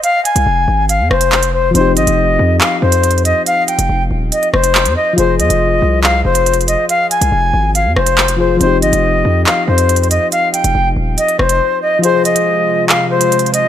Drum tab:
HH |x-----x--x--------------x--------x-----x--------|x-----x--x-----------------------x--x-x-x-x-----|x-----x--x--------------x--x-----x-----x--------|x-----x--x-----------------------x--x-x-x-x-----|
CP |------------------------------------x-----------|------------------------x-----------------------|------------------------------------x-----------|------------------------x-----------------------|
SD |------------------------------r-----------------|------------------------------------------------|------------------------------r-----------------|------------------------------------------------|

HH |x-----x--x--------------x--------x-----x--------|x-----x--x-----------------------x--x-x-x-x-----|x-----x--x--------------x--x-----x--------------|x-----x--x-----------------------x--x-x-x-x-----|
CP |------------------------------------x-----------|------------------------x-----------------------|------------------------------------------------|------------------------x-----------------------|
SD |------------------------------r-----------------|------------------------------------------------|------------------------------r-----------------|------------------------------------------------|